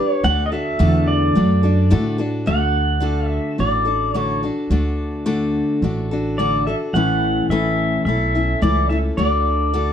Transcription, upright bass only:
0.24 D2
0.80 E2
1.36 F#2
1.92 A2
2.48 D2
3.59 A1
4.70 D2
5.82 A1
6.93 A1
7.49 A1
8.05 B1
8.62 C#2
9.18 D2

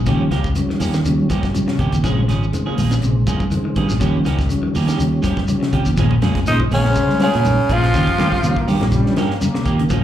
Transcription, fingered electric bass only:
0.07 D#2
0.31 C#2
0.80 D#2
1.05 D#2
1.79 C3
1.93 D#2
2.04 A#1
2.30 G#1
2.78 A#1
3.03 A#1
3.77 G2
3.90 A#1
4.01 D#2
4.27 C#2
4.76 D#2
5.00 D#2
5.73 C3
5.87 D#2
5.97 A#1
6.23 F2
6.47 A#2
6.71 A#1
7.35 A#2
7.45 A#1
7.70 A#1
7.94 D#2
8.20 D#2
8.44 D#2
8.69 G2
8.81 A#1
9.06 G2
9.66 D#2
9.91 A#1

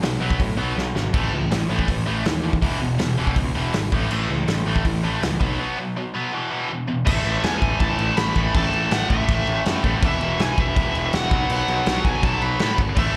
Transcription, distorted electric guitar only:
0.02 B2 F#3
0.20 B2 F#3 B3
0.38 B2 F#3
0.57 B2 F#3 B3
0.76 B2 F#3
0.95 B2 F#3
1.13 A2 E3 A3
1.32 A2 E3
1.51 A2 E3
1.69 A2 E3 A3
1.88 A2 E3
2.06 A2 E3 A3
2.25 A2 E3
2.44 A2 E3
2.62 E2 B2 E3
2.81 E2 B2
2.99 E2 B2
3.18 E2 B2 E3
3.37 E2 B2
3.55 E2 B2 E3
3.74 E2 B2
3.92 A2 E3 A3
4.10 A2 E3 A3
4.30 A2 E3
4.48 A2 E3
4.66 A2 E3 A3
4.85 A2 E3
5.04 A2 E3 A3
5.21 A2 E3
5.39 B2 F#3 B3
5.59 B2 F#3 B3
5.78 B2 F#3
5.96 B2 F#3
6.14 B2 F#3 B3
6.33 E2 B2 E3
6.51 E2 B2 E3
6.69 E2 B2
6.87 E2 B2
7.05 A2 E3 A3
8.35 E3 A3
8.39 A2
8.55 A2 E3 A3
9.84 E3 A3
9.88 A2
10.01 E2 B2 E3
11.29 B2 F#3
11.33 B3
12.60 B2 F#3 B3
12.95 A2 E3
12.99 A3

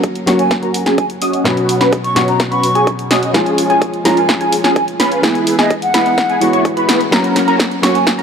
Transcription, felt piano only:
Already playing: F#3 A#3 C#4 F#4
0.26 F#3 A#3 C#4 F#4
1.44 B2 F#3 B3 C#4 F#4
2.15 B2 F#3 B3 C#4 F#4
3.33 F3 G#3 C#4 F4
4.04 F3 G#3 C#4 F4
5.22 E3 G#3 B3 E4
5.94 E3 G#3 B3 E4
6.40 E3 G#3 B3 F#4
7.11 F#3 A#3 C#4 F#4
7.82 F#3 A#3 C#4 F#4

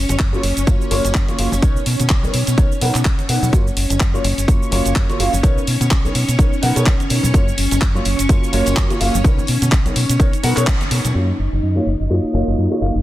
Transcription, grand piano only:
0.33 A#3 F4 F#4 C#5
0.67 A#3 F4 F#4 C#5
0.91 A#3 F4 F#4 C#5
1.28 A#3 F4 F#4 C#5
1.38 A#3 F4 F#4 F5
1.62 B3 D#4 A#4 C#5
2.23 B3 D#4 A#4 C#5
2.57 B3 D#4 A#4 C#5
2.81 B3 D#4 A#4 F#5
3.29 B3 D#4 A#4 F#5
3.53 A#3 F4 F#4 C#5
4.14 A#3 F4 F#4 C#5
4.48 A#3 F4 F#4 C#5
4.72 A#3 F4 F#4 C#5
5.09 A#3 F4 F#4 C#5
5.19 A#3 F4 F#4 F5
5.43 B3 D#4 A#4 C#5
6.04 B3 D#4 A#4 C#5
6.38 B3 D#4 A#4 C#5
6.62 B3 D#4 A#4 F#5
6.75 B3 D#4 A#4 C#5
7.10 B3 D#4 A#4 C#5
7.34 A#3 F4 F#4 C#5
7.95 A#3 F4 F#4 C#5
8.29 A#3 F4 F#4 C#5
8.53 A#3 F4 F#4 C#5
8.90 A#3 F4 F#4 C#5
9.00 A#3 F4 F#4 F5
9.24 B3 D#4 A#4 C#5
9.85 B3 D#4 A#4 C#5
10.19 B3 D#4 A#4 C#5
10.43 B3 D#4 A#4 F#5
10.57 B3 D#4 A#4 C#5
10.91 B3 D#4 A#4 C#5
11.14 A#3 F4 F#4 C#5
11.75 A#3 F4 F#4 C#5
12.10 A#3 F4 F#4 C#5
12.33 A#3 F4 F#4 C#5
12.71 A#3 F4 F#4 C#5
12.81 A#3 F4 F#4 F5

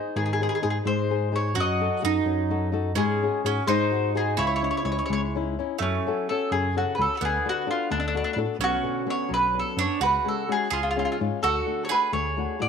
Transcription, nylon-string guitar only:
Already playing: D#4 G#4 C5
0.16 D#3
0.41 D#4 G#4 C5
0.62 D#4 G#4 C5
0.85 G#3
1.10 D#4 G#4 C5
1.32 D#4 G#4 C5
1.54 F#3
1.80 D#4 F#4 A4
2.02 D#4 F#4 A4
2.26 F#3
2.50 D#4 F#4 A4
2.72 D#4 F#4 A4
2.96 G#3
3.23 C#4 F#4 G#4
3.45 C#4 F#4 G#4
3.67 G#3
3.91 F#4 G#4 C5
4.15 F#4 G#4 C5
4.37 C#3
4.62 C#4 E4 D#5
4.85 C#4 E4 D#5
5.09 G#3
5.35 C#4 D#4 E4
5.59 C#4 D#4 E4
5.82 F#3
6.06 C#4 F#4 A4
6.30 C#4 F#4 A4
6.52 C#3
6.76 C#4 F#4 A4
6.98 C#4 F#4 A4
7.21 D3
7.45 D4 F#4 A4
7.67 D4 F#4 A4
7.90 A3
8.15 D4 F#4 A4
8.37 D4 F#4 A4
8.60 B2
8.83 D3 B3 C#4
9.06 D3 B3 C#4
9.29 F#3
9.54 B3 C#4 D4
9.76 B3 C#4 D4
10.00 C#3
10.24 G#3 C#4 F#4
10.48 G#3 C#4 F#4
10.71 C#3
10.96 G#3 C#4 F4
11.20 G#3 C#4 F4
11.42 D3
11.66 A3 D4 F#4
11.89 A3 D4 F#4
12.13 A3
12.37 A3 D4 F#4
12.59 A3 D4 F#4

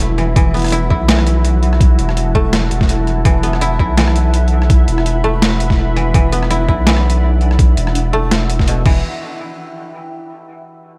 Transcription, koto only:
Already playing: B2 E3 A3 B3 E4
0.18 E3
0.36 E3
0.54 B3
0.72 E4
0.90 E4
1.08 E3
2.35 A3
3.25 E3
3.43 B3
3.62 E4
3.80 E4
3.98 E3
5.24 A3
5.96 E3
6.14 E3
6.32 B3
6.51 E4
6.68 E4
6.87 E3
8.13 A3
8.68 B2
8.86 E3

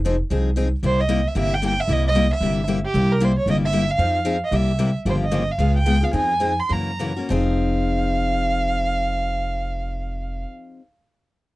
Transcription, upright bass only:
Already playing: F1
0.31 C2
0.83 C2
1.35 G1
1.88 C2
2.41 G1
2.94 C2
3.46 G1
3.98 F2
4.51 C2
5.05 G1
5.58 C#2
6.13 F2
6.70 F#2
7.30 F1

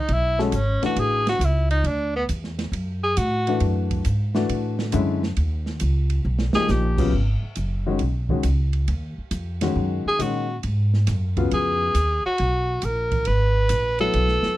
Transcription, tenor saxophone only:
Already playing: D#4
0.13 E4
0.42 A3
0.55 C#4
0.86 F#4
0.99 G#4
1.29 F#4
1.45 E4
1.71 D#4
1.87 D4
2.16 B3
3.03 G#4
3.18 F#4
6.55 G#4
6.71 G4
10.08 G#4
10.22 F#4
11.54 G#4
12.26 F#4
12.85 A#4
13.27 B4
14.01 A4

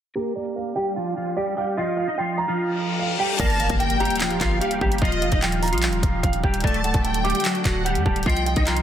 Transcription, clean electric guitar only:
0.16 A#3 A#4
0.36 A#3 A#4
0.76 G3 G4
0.96 F3 F4
1.17 F3 F4
1.37 G3 G4
1.57 G3 G4
1.77 F3 F4
2.07 D#4 D#5
2.19 F3 F4
2.48 F3 F4
3.19 G3 G4
3.40 A#3 A#4
3.59 A#3 A#4
4.00 G3 G4
4.20 F3 F4
4.41 F3 F4
4.61 G3 G4
4.81 G3 G4
5.02 F3 F4
5.32 D#4 D#5
5.42 F3 F4
5.72 F3 F4
6.43 G3 G4
6.64 A3 A4
6.84 A3 A4
7.25 G3 G4
7.45 F#3 F#4
7.65 F#3 F#4
7.85 G3 G4
8.06 G3 G4
8.26 F3 F4
8.56 D#4 D#5
8.66 F3 F4

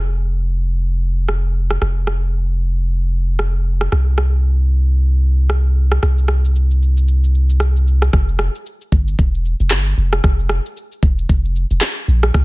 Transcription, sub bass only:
Already playing: F1
1.82 F1
3.92 C2
6.03 C2
8.13 F1
8.92 G1
9.19 E1
9.60 F1
9.71 G1
9.98 F1
10.24 F1
11.03 E1
11.29 F1
11.71 E1
12.08 A#1
12.35 C2

